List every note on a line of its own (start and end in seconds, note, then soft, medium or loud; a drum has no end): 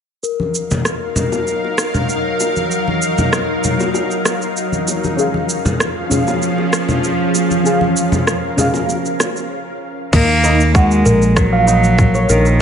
0.23 5.14 F#3 medium
0.23 5.14 D#4 medium
0.23 5.14 A#4 medium
0.23 9.51 A#4 medium
0.23 5.14 F5 medium
0.23 shaker soft
0.40 high conga medium
0.55 shaker medium
0.71 high conga medium
0.71 low conga medium
0.71 shaker soft
0.85 cross-stick medium
0.85 shaker soft
1.16 low conga medium
1.16 shaker medium
1.32 high bongo medium
1.32 shaker soft
1.47 shaker soft
1.64 high bongo soft
1.78 cross-stick medium
1.78 shaker medium
1.94 low conga medium
1.94 shaker soft
2.09 shaker soft
2.40 high bongo soft
2.40 shaker medium
2.56 high conga medium
2.56 shaker soft
2.71 shaker soft
2.88 high conga medium
3.02 shaker medium
3.18 high conga medium
3.18 low conga medium
3.18 shaker soft
3.33 cross-stick medium
3.33 shaker soft
3.64 low conga medium
3.64 shaker medium
3.80 high bongo medium
3.80 shaker soft
3.94 high bongo soft
3.94 shaker soft
4.11 shaker soft
4.25 cross-stick medium
4.25 high bongo soft
4.25 shaker medium
4.42 shaker soft
4.57 shaker soft
4.72 high conga medium
4.72 shaker soft
4.88 high bongo soft
4.88 shaker medium
5.04 high bongo soft
5.04 high conga medium
5.04 shaker soft
5.16 9.47 F3 medium
5.16 6.07 C#4 medium
5.16 9.47 C#4 medium
5.16 7.63 G#4 medium
5.16 6.08 G#4 medium
5.16 9.47 F5 medium
5.16 shaker soft
5.20 6.09 F5 loud
5.34 high conga medium
5.49 shaker medium
5.65 high conga medium
5.65 low conga medium
5.65 shaker soft
5.80 cross-stick medium
5.80 shaker soft
6.09 7.61 C#4 medium
6.09 7.62 G#4 medium
6.09 low conga medium
6.09 shaker medium
6.13 7.63 F5 medium
6.27 high bongo medium
6.27 shaker soft
6.42 shaker soft
6.58 high bongo soft
6.73 cross-stick medium
6.73 shaker medium
6.88 low conga medium
6.88 shaker soft
7.04 shaker soft
7.35 high bongo soft
7.35 shaker medium
7.51 high conga medium
7.51 shaker soft
7.64 8.54 C#4 medium
7.64 8.55 G#4 medium
7.64 9.49 A#4 medium
7.64 shaker soft
7.68 8.56 F5 medium
7.81 high conga medium
7.97 shaker medium
8.12 high conga medium
8.12 low conga medium
8.12 shaker soft
8.27 cross-stick medium
8.27 shaker soft
8.56 9.50 C#4 medium
8.56 9.51 G#4 medium
8.56 9.52 F5 medium
8.56 low conga medium
8.56 shaker medium
8.74 high bongo medium
8.74 shaker soft
8.89 high bongo soft
8.89 shaker soft
9.06 shaker soft
9.20 cross-stick medium
9.20 high bongo medium
9.20 shaker medium
9.36 shaker soft
10.13 11.01 D#2 medium
10.13 10.71 A#3 loud
10.13 10.28 D#4 medium
10.13 12.62 A#4 medium
10.13 kick loud
10.13 mid tom medium
10.13 crash medium
10.13 shaker soft
10.44 10.59 D#4 medium
10.44 shaker medium
10.60 shaker soft
10.75 11.38 G#3 loud
10.75 11.04 F#4 medium
10.75 kick loud
10.75 shaker soft
10.91 shaker soft
11.06 12.25 A#1 medium
11.06 11.21 A#4 medium
11.06 mid tom medium
11.06 shaker medium
11.22 shaker soft
11.36 12.32 F#3 loud
11.36 kick loud
11.36 cross-stick medium
11.36 shaker soft
11.53 11.67 F4 medium
11.67 11.83 D#4 medium
11.67 shaker medium
11.84 shaker soft
11.98 kick loud
11.98 mid tom medium
11.98 shaker soft
12.14 12.28 C#5 medium
12.14 shaker soft
12.29 12.62 A#1 medium
12.29 12.62 D#3 medium
12.29 12.45 A#4 medium
12.29 shaker medium
12.46 shaker soft